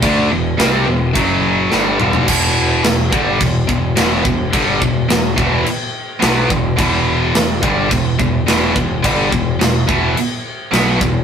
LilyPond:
<<
  \new Staff \with { instrumentName = "Distorted electric guitar" } { \clef bass \time 4/4 \key e \minor \tempo 4 = 107 <d a d'>8 <e, b,>8 <c g c'>8 <e, b,>8 <fis, cis fis>4 <g, d g>8 <e, b, e>8 | <e, b, e>4 <e, b,>8 <g, d g>8 <e, b,>8 <e, b,>8 <e, b, e>8 <e, b,>8 | <g, d g>8 <e, b,>8 <e, b,>8 <e, b, e>8 r4 <b, fis b>8 <e, b,>8 | <e, b, e>4 <e, b,>8 <g, d g>8 <e, b,>8 <e, b,>8 <e, b, e>8 <e, b,>8 |
<g, d g>8 <e, b,>8 <e, b,>8 <e, b, e>8 r4 <b, fis b>8 <e, b,>8 | }
  \new Staff \with { instrumentName = "Picked electric bass" } { \clef bass \time 4/4 \key e \minor d,8 e,,8 c,8 e,,8 fis,,4 g,,8 e,,8 | e,,4 e,,8 g,,8 e,,8 e,,8 e,,8 e,,8 | g,,8 e,,8 e,,8 e,,8 r4 b,,8 e,,8 | e,,4 e,,8 g,,8 e,,8 e,,8 e,,8 e,,8 |
g,,8 e,,8 e,,8 e,,8 r4 b,,8 e,,8 | }
  \new DrumStaff \with { instrumentName = "Drums" } \drummode { \time 4/4 <cymc bd>4 <cymc sn>4 <cymc bd>4 sn8 toml16 tomfh16 | <cymc bd>4 <cymc sn>8 bd8 <cymc bd>8 bd8 <cymc sn>8 bd8 | <cymc bd>8 bd8 <cymc sn>8 bd8 cymc4 <cymc sn>8 bd8 | <cymc bd>4 <cymc sn>8 bd8 <cymc bd>8 bd8 <cymc sn>8 bd8 |
<cymc bd>8 bd8 <cymc sn>8 bd8 cymc4 <cymc sn>8 bd8 | }
>>